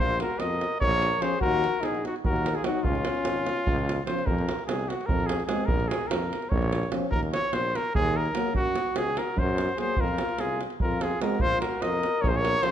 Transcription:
0.00 A#1 F4 C5
0.10 davul high
0.18 F#4 A#4, davul high
0.30 davul high
0.38 F2 A#4 D#5, davul high
0.51 davul high
0.61 davul high
0.72 davul high
0.80 A#1 A#4 C#5, davul low
1.02 davul high
1.13 davul high
1.19 F3 C#4 G#4 C5, davul high
1.40 D#2 F#4 A#4, davul low
1.52 davul high
1.64 davul high
1.74 davul high
1.81 A#1 D#4 G#4, davul high
1.95 davul high
2.05 D#4 F#4, davul high
2.16 davul high
2.25 D#2 F#4 A#4, davul low
2.36 davul high
2.46 davul high
2.55 F4 G#4, davul high
2.62 F#3 D#4 F#4, davul high
2.66 D#4
2.83 C#2 C#4 F4, davul low
2.95 davul high
3.05 davul high
3.15 davul high
3.25 G#1, davul high
3.47 davul high
3.57 davul high
3.66 C#2, davul low
3.79 davul high
3.89 davul high
4.06 F3 C#4 C5, davul high
4.19 davul high
4.26 F2 A#4, davul low
4.39 davul high
4.49 davul high
4.59 davul high
4.66 C2 G#4, davul high
4.79 davul high
4.88 F#4, davul high
5.01 davul high
5.06 F2 A#4, davul low
5.20 davul high
5.26 G#4, davul high
5.40 davul high
5.46 G#3 C4 G#4, davul high
5.66 A#1 A#4, davul low
5.80 davul high
5.88 G#4, davul high
6.01 davul high
6.07 F2 A#4, davul high
6.22 davul high
6.33 davul high
6.42 davul high
6.49 A#1 C#5, davul low
6.62 davul high
6.73 davul high
6.83 davul high
6.91 F3 C#4, davul high
7.10 D#2 A#4, davul low
7.23 davul high
7.33 C#5, davul high
7.44 davul high
7.52 A#1 C5, davul high
7.65 davul high
7.75 A#4, davul high
7.85 davul high
7.95 D#2 G#4, davul low
8.06 davul high
8.17 A#4
8.26 davul high
8.34 F#3 A#3, davul high
8.53 F#2 F#4, davul low
8.65 davul high
8.76 davul high
8.86 davul high
8.95 C#2 G#4, davul high
9.07 davul high
9.17 F#4 A#4, davul high
9.27 davul high
9.37 F#2 F#4 C5, davul low
9.49 davul high
9.58 davul high
9.69 davul high
9.76 F#3 A#3 G#4, davul high
9.80 C5
9.97 F2 F4 A#4, davul low
10.08 davul high
10.18 davul high
10.29 davul high
10.38 C2 F4 G#4, davul high
10.49 davul high
10.61 davul high
10.70 davul high
10.80 F2 F4 A#4, davul low
10.91 davul high
11.01 F4 G#4, davul high
11.11 davul high
11.20 G#3 C4 F#4 A#4, davul high
11.40 A#1 F4 C5, davul low
11.50 davul high
11.61 F#4 A#4, davul high
11.72 davul high
11.81 F2 A#4 D#5, davul high
11.93 davul high
12.03 davul high
12.21 A#1 A#4 C#5, davul low
12.28 G#4 C5
12.34 C#5, davul high
12.41 A#4
12.45 davul high
12.53 davul high
12.62 F3 C#4 G#4 C5, davul high

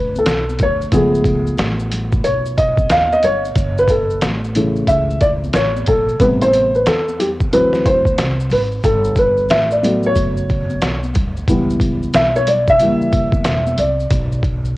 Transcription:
Already playing: D2 B4
0.16 A4, high conga, maracas
0.26 B1, snare, closed hi-hat, maracas
0.49 high conga, maracas
0.59 D2 C#5, kick, closed hi-hat, low conga, maracas
0.82 maracas
0.92 C#2 F3 A3 B3 G#4, kick, closed hi-hat, maracas
1.15 maracas
1.24 kick, closed hi-hat, maracas
1.47 maracas
1.57 A1, snare, closed hi-hat, high conga, low conga, maracas
1.79 maracas
1.91 closed hi-hat, low conga, maracas
2.12 kick, maracas
2.24 B1 C#5, closed hi-hat, maracas
2.46 maracas
2.57 D#5, kick, closed hi-hat, maracas
2.77 kick, high conga, maracas
2.89 D#2 F5, snare, closed hi-hat, maracas
3.12 D#5, high conga, maracas
3.23 G1 C#5, closed hi-hat, low conga, maracas
3.45 maracas
3.55 F#1, kick, closed hi-hat, maracas
3.78 B4, maracas
3.88 A4, kick, closed hi-hat, maracas
4.10 maracas
4.22 A1, snare, closed hi-hat, high conga, low conga, maracas
4.44 maracas
4.55 C#3 E3 A3, closed hi-hat, low conga, maracas
4.76 maracas
4.87 C#2 E5, kick, closed hi-hat, maracas
5.10 maracas
5.21 D5, kick, closed hi-hat, maracas
5.44 high conga, maracas
5.53 A1 C#5, snare, closed hi-hat, maracas
5.76 high conga, maracas
5.86 A#1 A4, kick, closed hi-hat, low conga, maracas
6.09 maracas
6.20 A1 C3 G3 B3 B4, kick, closed hi-hat, maracas
6.41 C5, closed hi-hat, maracas
6.53 closed hi-hat, maracas
6.75 B4, maracas
6.86 E2 A4, snare, closed hi-hat, maracas
7.09 high conga, maracas
7.20 G4, closed hi-hat, high conga, low conga, maracas
7.40 kick, maracas
7.53 D2 E3 F#3 C4 B4, closed hi-hat, maracas
7.73 snare, maracas
7.86 C5, kick, closed hi-hat, maracas
8.05 kick, high conga, maracas
8.18 C2, snare, closed hi-hat, maracas
8.40 maracas
8.50 G#1 B4, open hi-hat, low conga, maracas
8.72 maracas
8.84 G1 A4, kick, closed hi-hat, maracas
9.05 maracas
9.16 B4, kick, closed hi-hat, maracas
9.37 maracas
9.49 A1 E5, snare, closed hi-hat, high conga, low conga, maracas
9.71 D5, maracas
9.83 F#3 A3 B3, closed hi-hat, low conga, maracas
10.03 C#5, maracas
10.15 F#1, kick, closed hi-hat, maracas
10.37 maracas
10.49 kick, closed hi-hat, maracas
10.70 high conga, maracas
10.81 B1, snare, closed hi-hat, maracas
11.03 high conga, maracas
11.14 D2, kick, closed hi-hat, low conga, maracas
11.37 maracas
11.48 C#2 E3 G3 B3, kick, closed hi-hat, maracas
11.70 maracas
11.80 kick, closed hi-hat, maracas
12.03 maracas
12.13 B1 E5, snare, closed hi-hat, high conga, low conga, maracas
12.36 C#5, maracas
12.47 D5, closed hi-hat, low conga, maracas
12.68 E5, kick, maracas
12.79 F#1 E3 G3 A#3, closed hi-hat, maracas
13.02 maracas
13.13 kick, closed hi-hat, maracas
13.32 kick, high conga, maracas
13.45 E1, snare, closed hi-hat, maracas
13.67 high conga, maracas
13.77 C2 D5, closed hi-hat, low conga, maracas
14.00 maracas
14.10 B1, kick, closed hi-hat, maracas
14.32 maracas
14.43 kick, closed hi-hat, maracas
14.65 maracas

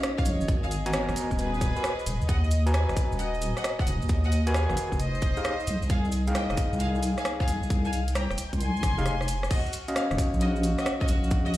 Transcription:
Already playing: C#4 D#4 F#4 D#5
0.03 cross-stick, closed hi-hat, cabasa
0.18 C#5 F5, kick, cabasa
0.25 A#1, open hi-hat, cabasa
0.41 G#1, cabasa
0.48 kick, closed hi-hat, cabasa
0.64 G#4 F5, cabasa
0.71 open hi-hat, cabasa
0.86 B3 F#4 G#5 A#5, closed hi-hat, cabasa
0.93 A#4 C#5, cross-stick, closed hi-hat, cabasa
1.09 G#1, cross-stick, cabasa
1.16 open hi-hat, cabasa
1.31 D#1, kick, cabasa
1.39 G#4 B4, closed hi-hat, cabasa
1.54 cabasa
1.61 kick, cross-stick, open hi-hat, cabasa
1.76 F#4 A#4 B4 G#5, cabasa
1.84 cross-stick, closed hi-hat, cabasa
1.99 cabasa
2.06 D#1, open hi-hat, cabasa
2.21 D#2, cabasa
2.29 D#5 F#5, kick, closed hi-hat, cabasa
2.44 cabasa
2.51 open hi-hat, cabasa
2.66 F#4 B4 G#5 A#5, closed hi-hat, cabasa
2.74 B4 G#5, cross-stick, closed hi-hat, cabasa
2.89 G#1, cross-stick, cabasa
2.96 kick, open hi-hat, cabasa
3.12 D#1, cabasa
3.19 D#5 F#5, closed hi-hat, cabasa
3.34 cabasa
3.42 open hi-hat, cabasa
3.57 D#5 F#5, cross-stick, cabasa
3.64 cross-stick, closed hi-hat, cabasa
3.79 D#5 F#5, kick, cabasa
3.87 D#1, open hi-hat, cabasa
4.02 D#2, cabasa
4.09 kick, closed hi-hat, cabasa
4.24 D#5 F#5, cabasa
4.32 open hi-hat, cabasa
4.47 F#4 A#4 B4 G#5, closed hi-hat, cabasa
4.54 G#4 F5, cross-stick, closed hi-hat, cabasa
4.69 G#1, cross-stick, cabasa
4.77 open hi-hat, cabasa
4.92 F1, kick, cabasa
5.00 C5 D#5, closed hi-hat, cabasa
5.15 cabasa
5.22 kick, open hi-hat, cabasa
5.37 D#4 G4 G#4 F5, cabasa
5.45 cross-stick, closed hi-hat, cabasa
5.60 cabasa
5.67 C2, open hi-hat, cabasa
5.82 C2, cabasa
5.90 G#4 F5, kick, closed hi-hat, cabasa
6.05 cabasa
6.12 open hi-hat, cabasa
6.27 D#4 G#4 F5 G5, closed hi-hat, cabasa
6.35 D#5 G5, cross-stick, closed hi-hat, cabasa
6.50 F1, cross-stick, cabasa
6.57 kick, open hi-hat, cabasa
6.73 C2, cabasa
6.80 G#4 F5, closed hi-hat, cabasa
6.95 cabasa
7.03 open hi-hat, cabasa
7.18 G#4 F5, cross-stick, cabasa
7.25 cross-stick, closed hi-hat, cabasa
7.40 G#4 F5, kick, cabasa
7.48 C2, open hi-hat, cabasa
7.63 C2, cabasa
7.70 kick, closed hi-hat, cabasa
7.85 F5 G#5, cabasa
7.93 open hi-hat, cabasa
8.08 closed hi-hat, cabasa
8.15 G5 A#5, cross-stick, closed hi-hat, cabasa
8.30 F1, cross-stick, cabasa
8.38 open hi-hat, cabasa
8.53 C2, kick, closed hi-hat, cabasa
8.60 G#5 C6, closed hi-hat, cabasa
8.77 cabasa
8.83 G#1, kick, cross-stick, open hi-hat, cabasa
8.98 F1 D#4 G4 G#4 F5, cabasa
9.06 cross-stick, closed hi-hat, cabasa
9.21 cross-stick, cabasa
9.28 open hi-hat, cabasa
9.43 cross-stick, cabasa
9.51 F#4 D#5 F6, kick, closed hi-hat, crash, cabasa
9.66 cabasa
9.73 open hi-hat, cabasa
9.88 C#4 F#4 D#5 F5, closed hi-hat, cabasa
9.96 C#5 F5, cross-stick, closed hi-hat, cabasa
10.11 D#1, cross-stick, cabasa
10.18 kick, open hi-hat, cabasa
10.34 A#1, cabasa
10.41 F#4 D#5, closed hi-hat, cabasa
10.56 cabasa
10.63 open hi-hat, cabasa
10.78 F#4 D#5, cross-stick, cabasa
10.86 cross-stick, closed hi-hat, cabasa
11.01 F#4 D#5, kick, cabasa
11.08 A#1, open hi-hat, cabasa
11.24 A#1, cabasa
11.31 kick, closed hi-hat, cabasa
11.46 F#4 D#5, cabasa
11.54 open hi-hat

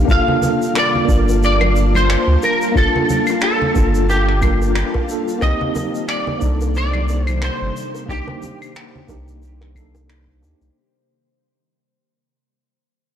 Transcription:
Already playing: G3 A#3 D4 D#4 G4 A4 F5
0.05 G1 A#3 D4 F4 A5, kick, shaker
0.10 F4 A4 F5
0.28 low conga
0.42 high bongo, high conga, low conga, shaker
0.62 shaker
0.75 D5, finger snap, high bongo, shaker
0.95 low conga
1.05 G1 A#3 D4, kick
1.09 F4 A#4, shaker
1.29 high bongo, shaker
1.43 D5, shaker
1.61 high bongo, high conga, claves
1.76 shaker
1.95 C5, high conga, claves, shaker
2.10 finger snap, high bongo, shaker
2.27 D2
2.42 A#4, high bongo, shaker
2.62 shaker
2.72 G1 A#3 D4, kick
2.76 F4 A4, shaker
2.96 high bongo, low conga
3.09 high conga, low conga, shaker
3.27 high bongo, claves, shaker
3.41 A4, finger snap, shaker
3.62 low conga
3.74 G1 A#3 D4 F4 A4, kick, high bongo, shaker
3.95 shaker
4.09 G4, high bongo, shaker
4.29 finger snap
4.41 A#3 D4 F4 A#4, kick, high conga, claves, shaker
4.62 high bongo, shaker
4.75 finger snap, shaker
4.94 kick, high bongo
5.08 A#3 D4 F4 A4, shaker
5.28 shaker
5.39 C2 C3 D#3 G3 A#3 C4 C5 D#5, kick, high bongo, shaker
5.43 D#4 G4
5.61 low conga
5.75 high bongo, high conga, low conga, shaker
5.95 shaker
6.09 D5, finger snap, shaker
6.27 high bongo, low conga
6.39 C2 A#3 D4, kick, shaker
6.43 D#4 A4
6.61 high bongo, shaker
6.75 D5, shaker
6.93 high conga, claves
7.09 high bongo, shaker
7.27 C5, high conga, claves, shaker
7.42 C5, finger snap, high bongo, shaker
7.61 G1
7.77 shaker
7.95 high bongo, shaker
8.06 C2 A#3 D4 G4, kick
8.10 D#4 G4, shaker
8.28 high bongo, low conga
8.42 high conga, low conga, shaker
8.62 claves, shaker
8.76 finger snap, high bongo, shaker
8.96 low conga
9.07 C2 A#3 D4 D#4 G4, kick, high bongo, shaker
9.28 shaker
9.42 shaker
9.61 finger snap, high bongo
9.75 A#3 D4 D#4 A4, kick, high conga, claves, shaker
9.95 high bongo, shaker
10.10 finger snap, shaker
10.28 kick
10.41 D#2 A#3 D4 D#4 G4, high bongo, shaker
10.61 C2, shaker

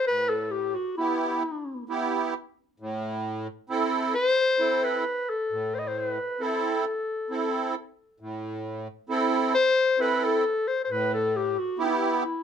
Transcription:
0.07 A2 B4
0.29 A4
0.51 G4
0.75 F#4
0.98 B3 E4 G4
1.89 B3 E4 G4
2.80 A2
3.69 C4 E4 A4
4.14 C5
4.59 C4 E4 A4
4.84 B4
5.30 A4
5.51 A2
5.75 C5
5.79 D#5
5.88 C5
5.99 B4
6.40 C4 E4 A4
7.30 C4 E4 A4
8.20 A2
9.09 C4 E4 A4
9.54 C5
9.99 C4 E4 A4 B4
10.24 A4
10.68 C5
10.84 C5
10.89 A2 B4
11.14 A4
11.36 G4
11.59 F#4
11.78 B3 E4 G4

